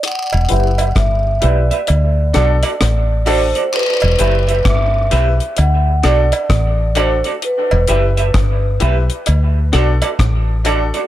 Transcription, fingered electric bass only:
X:1
M:4/4
L:1/16
Q:"Swing 16ths" 1/4=65
K:Em
V:1 name="Fingered electric bass" clef=bass
z E,,, F,,,2 G,,,2 B,,, z D,,2 B,,, z A,,,3 z | z E,,, F,,,2 G,,,2 B,,, z D,,2 B,,, z A,,,3 z | z E,,, F,,,2 G,,,2 B,,, z D,,2 B,,, z A,,,3 z |]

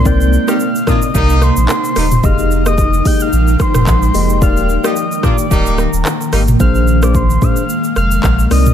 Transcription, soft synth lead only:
X:1
M:4/4
L:1/16
Q:"Swing 16ths" 1/4=110
K:Bbmix
V:1 name="Soft synth lead"
g'3 f'3 e'2 e'2 c'6 | f'3 e'3 g' f'3 c'6 | f'3 e'3 d'4 b4 z2 | f'3 d' c'2 f'4 f'4 e'2 |]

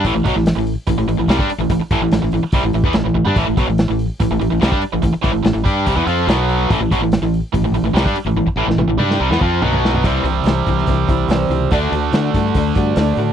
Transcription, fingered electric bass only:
X:1
M:4/4
L:1/16
Q:1/4=144
K:Am
V:1 name="Fingered electric bass" clef=bass
A,,, A,,, B,,, A,,,2 A,,,2 z A,,, A,,, A,,, A,,, C,, G,, z A,,, | A,,, z A,,, A,,, A,,, A,,, A,,, z C,, A,,, A,,, E,, A,,, A,,, A,,, G,, | A,,, A,,, B,,, A,,,2 A,,,2 z A,,, A,,, A,,, A,,, C,, G,, z A,,, | A,,, z A,,, A,,, A,,, A,,, G,,2 C,, E,, F,,2 B,,,4 |
A,,, A,,, B,,, A,,,2 A,,,2 z A,,, A,,, A,,, A,,, C,, G,, z A,,, | A,,, z A,,, A,,, A,,, A,,, G,,2 C,, E,, F,,2 B,,,4 | C,,2 C,,2 C,,2 C,,2 C,,2 C,,2 C,,2 ^C,,2 | D,,2 D,,2 D,2 G,,2 D,,2 G,,2 D,,2 A,,2 |]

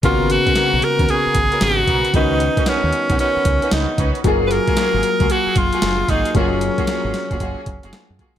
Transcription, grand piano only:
X:1
M:4/4
L:1/8
Q:"Swing 16ths" 1/4=114
K:G#dor
V:1 name="Grand piano"
[C,A,B,F]8 | [D,B,CF]8 | [F,A,EG]8 | [F,A,EG]8 |]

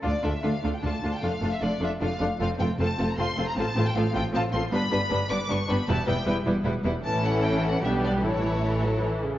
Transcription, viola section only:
X:1
M:3/4
L:1/8
Q:1/4=154
K:Dm
V:1 name="Viola section"
[A,D] [A,D] [A,D] [A,D] [A,D] [A,D] | [A,D] [A,D] [A,D] [A,D] [A,D] [A,D] | [A,C] [A,C] [A,C] [A,C] [A,C] [A,C] | [F,C] [F,C] [F,C] [F,C] [F,C] [F,C] |
[K:Amix] [G,B,] [G,B,] [G,B,] [G,B,] [G,B,] [G,B,] | [G,B,] [G,B,] [G,B,] [G,B,] [G,B,] [G,B,] | [E,C]4 [G,B,]2 | [E,E]2 E, F, E, C, |]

